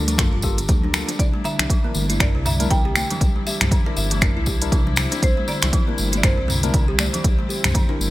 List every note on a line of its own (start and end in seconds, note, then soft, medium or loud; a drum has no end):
0.00 0.28 D2 medium
0.00 8.10 G3 medium
0.00 5.19 D4 medium
0.00 1.15 A4 medium
0.00 1.15 A#4 medium
0.08 0.14 F3 medium
0.08 closed hi-hat medium
0.08 tambourine medium
0.08 high conga medium
0.18 0.34 A#3 medium
0.18 0.34 F4 medium
0.18 0.34 A4 medium
0.18 finger snap medium
0.18 kick loud
0.18 closed hi-hat soft
0.18 mid tom medium
0.18 tambourine soft
0.18 muted conga medium
0.18 high conga loud
0.33 0.65 G1 medium
0.33 0.43 F4 medium
0.42 0.59 A#3 medium
0.42 0.59 F4 medium
0.42 0.57 G4 medium
0.42 0.59 A4 loud
0.42 kick medium
0.42 tambourine loud
0.58 closed hi-hat medium
0.58 tambourine medium
0.68 1.04 D2 loud
0.68 0.82 F3 medium
0.68 kick loud
0.68 closed hi-hat soft
0.68 tambourine soft
0.68 muted conga soft
0.68 low conga loud
0.83 0.89 D4 medium
0.83 low conga medium
0.94 1.09 A#3 medium
0.94 1.09 F4 medium
0.94 1.09 A4 medium
0.94 finger snap loud
0.94 tambourine loud
1.08 1.18 D4 loud
1.08 closed hi-hat medium
1.08 tambourine medium
1.08 muted conga medium
1.19 1.31 C2 loud
1.19 8.10 C3 medium
1.19 8.10 E4 medium
1.19 1.31 D5 medium
1.19 kick loud
1.19 closed hi-hat soft
1.19 tambourine soft
1.34 1.43 G3 medium
1.34 high conga medium
1.44 1.58 D3 loud
1.44 2.16 E5 loud
1.44 tambourine medium
1.44 muted conga soft
1.59 1.67 C2 medium
1.59 finger snap medium
1.59 closed hi-hat medium
1.59 tambourine soft
1.59 low conga loud
1.69 1.84 E3 loud
1.69 kick loud
1.69 closed hi-hat soft
1.69 tambourine soft
1.84 1.90 A#3 medium
1.84 2.05 D4 medium
1.84 2.05 E4 medium
1.84 2.05 A#4 medium
1.84 muted conga soft
1.94 2.30 G1 medium
1.94 tambourine loud
1.94 high conga medium
2.09 2.15 E4 medium
2.09 closed hi-hat medium
2.09 tambourine medium
2.09 high conga medium
2.20 2.35 D4 medium
2.20 2.35 E4 medium
2.20 2.35 A#4 medium
2.20 2.47 D5 loud
2.20 finger snap medium
2.20 kick loud
2.20 closed hi-hat soft
2.20 mid tom medium
2.35 2.67 C2 medium
2.35 2.44 G3 medium
2.45 2.59 D3 loud
2.45 2.58 E5 loud
2.45 mid tom medium
2.45 tambourine loud
2.60 2.80 D4 loud
2.60 2.80 E4 medium
2.60 2.80 A#4 loud
2.60 closed hi-hat soft
2.60 tambourine medium
2.60 high conga loud
2.70 3.05 C2 medium
2.70 2.84 D3 loud
2.70 2.95 G5 loud
2.70 kick loud
2.70 closed hi-hat soft
2.70 tambourine soft
2.85 2.95 G4 loud
2.96 3.43 G5 loud
2.96 finger snap medium
2.96 tambourine loud
2.96 high conga loud
3.10 3.16 E3 loud
3.10 closed hi-hat medium
3.10 tambourine medium
3.10 muted conga soft
3.10 low conga loud
3.21 3.32 C2 loud
3.21 kick loud
3.21 closed hi-hat soft
3.21 tambourine soft
3.36 3.46 G3 medium
3.46 3.59 G4 medium
3.46 3.96 E5 medium
3.46 tambourine medium
3.46 muted conga medium
3.61 3.69 C2 medium
3.61 finger snap medium
3.61 closed hi-hat medium
3.61 mid tom medium
3.61 tambourine medium
3.61 high conga medium
3.61 low conga loud
3.71 3.85 D3 medium
3.71 kick loud
3.71 closed hi-hat soft
3.71 tambourine soft
3.86 4.07 D4 medium
3.86 3.96 D4 loud
3.86 4.07 E4 medium
3.86 4.06 A#4 medium
3.86 muted conga soft
3.97 4.32 G1 medium
3.97 4.68 E5 medium
3.97 tambourine medium
4.10 4.17 E3 medium
4.10 closed hi-hat medium
4.10 tambourine soft
4.10 high conga medium
4.21 4.37 D4 medium
4.21 4.37 E4 medium
4.21 4.37 A#4 medium
4.21 finger snap medium
4.21 kick loud
4.21 closed hi-hat soft
4.21 mid tom medium
4.21 tambourine soft
4.21 muted conga medium
4.21 high conga medium
4.37 4.69 C2 medium
4.37 4.47 E4 medium
4.46 4.60 G4 medium
4.46 kick medium
4.46 tambourine medium
4.61 4.82 D4 loud
4.61 4.82 E4 medium
4.61 4.82 A#4 loud
4.61 closed hi-hat soft
4.61 tambourine medium
4.72 5.07 C2 medium
4.72 4.85 E3 medium
4.72 kick loud
4.72 closed hi-hat soft
4.72 tambourine soft
4.72 muted conga soft
4.72 low conga medium
4.87 4.93 D4 medium
4.87 low conga medium
4.96 finger snap medium
4.96 tambourine loud
5.11 5.22 D4 loud
5.11 closed hi-hat medium
5.11 tambourine medium
5.11 muted conga soft
5.22 5.34 C2 loud
5.22 8.10 C4 medium
5.22 5.35 C5 loud
5.22 kick loud
5.22 closed hi-hat soft
5.22 tambourine soft
5.37 5.47 G3 medium
5.37 high conga medium
5.48 5.62 D3 loud
5.48 6.14 D5 loud
5.48 tambourine medium
5.48 muted conga medium
5.62 5.71 C2 medium
5.62 finger snap medium
5.62 closed hi-hat medium
5.62 tambourine soft
5.62 low conga medium
5.73 5.87 E3 loud
5.73 kick loud
5.73 closed hi-hat soft
5.87 5.93 A#3 medium
5.87 6.08 D4 medium
5.87 6.08 E4 medium
5.87 6.08 A#4 medium
5.87 muted conga soft
5.98 6.33 G1 loud
5.98 tambourine medium
5.98 high conga medium
6.12 6.18 E4 medium
6.12 closed hi-hat medium
6.12 tambourine soft
6.12 high conga medium
6.17 6.23 D5 medium
6.23 6.39 D4 medium
6.23 6.39 E4 medium
6.23 6.39 A#4 medium
6.23 6.95 C5 loud
6.23 finger snap medium
6.23 kick loud
6.23 closed hi-hat soft
6.23 mid tom medium
6.23 tambourine soft
6.23 muted conga medium
6.37 6.70 C2 medium
6.37 6.47 G3 medium
6.48 6.62 D3 loud
6.48 mid tom medium
6.48 tambourine medium
6.63 6.84 D4 loud
6.63 6.84 E4 medium
6.63 6.84 A#4 loud
6.63 closed hi-hat medium
6.63 tambourine soft
6.63 high conga loud
6.74 7.09 C2 medium
6.74 6.87 D3 loud
6.74 kick loud
6.74 closed hi-hat soft
6.74 tambourine soft
6.88 6.98 G4 loud
6.99 8.10 D5 loud
6.99 finger snap medium
6.99 tambourine medium
6.99 high conga loud
7.13 7.19 E3 loud
7.13 closed hi-hat medium
7.13 tambourine medium
7.13 muted conga medium
7.13 low conga loud
7.24 7.36 C2 loud
7.24 kick loud
7.24 closed hi-hat soft
7.24 tambourine soft
7.39 7.49 G3 medium
7.39 high conga medium
7.49 7.63 G4 medium
7.49 tambourine medium
7.49 muted conga soft
7.64 7.73 C2 medium
7.64 finger snap medium
7.64 closed hi-hat medium
7.64 mid tom medium
7.64 tambourine soft
7.64 high conga medium
7.64 low conga loud
7.74 7.88 D3 loud
7.74 kick loud
7.74 closed hi-hat soft
7.74 tambourine soft
7.89 7.99 D4 loud
7.89 8.10 D4 medium
7.89 8.10 E4 medium
7.89 8.10 A#4 medium
7.89 muted conga soft
8.00 8.10 G1 medium
8.00 tambourine medium
8.00 high conga medium